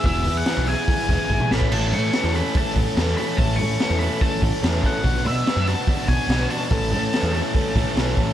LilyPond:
<<
  \new Staff \with { instrumentName = "Lead electric guitar" } { \time 4/4 \key a \major \tempo 4 = 144 e''8. fis''8. gis''2 b''8 | a''8 cis'''4 b''8 a''8 r4 b''8 | a''8 cis'''4 b''8 a''8 r4 fis''8~ | fis''8 e''4 a''4 gis''4 a''8~ |
a''2. r4 | }
  \new Staff \with { instrumentName = "Overdriven electric guitar" } { \time 4/4 \key a \major <e b e' gis'>8 <e b e' gis'>8 <e b e' gis'>8 <e b e' gis'>8 <e b e' gis'>8 <e b e' gis'>8 <e b e' gis'>8 <e a cis' a'>8 | <e a cis' a'>8 <e a cis' a'>8 <e a cis' a'>8 <e a cis' a'>8 <e a cis' a'>8 <e a cis' a'>8 <e a cis' a'>8 <e a cis' a'>8 | <e a cis' a'>8 <e a cis' a'>8 <e a cis' a'>8 <e a cis' a'>8 <e a cis' a'>8 <e a cis' a'>8 <e a cis' a'>8 <e a cis' a'>8 | <b d' fis'>8 <b d' fis'>8 <b d' fis'>8 <b d' fis'>8 <b d' fis'>8 <b d' fis'>8 <b d' fis'>8 <b d' fis'>8 |
<e a cis' a'>8 <e a cis' a'>8 <e a cis' a'>8 <e a cis' a'>8 <e a cis' a'>8 <e a cis' a'>8 <e a cis' a'>8 <e a cis' a'>8 | }
  \new Staff \with { instrumentName = "Picked electric bass" } { \clef bass \time 4/4 \key a \major e,,8 e,8 r16 b,,8 r8. e,,16 r16 gis,,16 r16 a,,8~ | a,,8 a,8 r16 e,8 r8. a,,16 r16 e,8 r8 | a,,8 a,8 r16 e,8 r8. a,,16 r16 e,8 r8 | b,,8 b,8 r16 fis,8 r8. b,,16 r16 b,,8 r8 |
a,,8 a,8 r16 e,8 r8. a,,16 r16 b,,8 a,,8 | }
  \new DrumStaff \with { instrumentName = "Drums" } \drummode { \time 4/4 <hho bd>8 hho8 <hho sn>16 sn16 hho8 <hho bd>8 <hho bd sn>8 bd16 toml16 sn16 bd16 | cymc8 hho8 <hho sn>16 sn16 hho8 <hho bd>8 <hho bd>8 <hho sn>8 hho8 | <hho bd>8 hho8 <hho sn>8 hho8 <hho bd>8 <hho bd>8 <hho sn>8 <hho bd>8 | <hho bd>8 hho8 <hho sn>8 hho8 <hho bd>8 <hho bd>8 <hho sn>8 hho8 |
<hho bd>8 hho8 <hho sn>8 hho8 <hho bd>8 <hho bd sn>8 <hho sn>8 <hho bd>8 | }
>>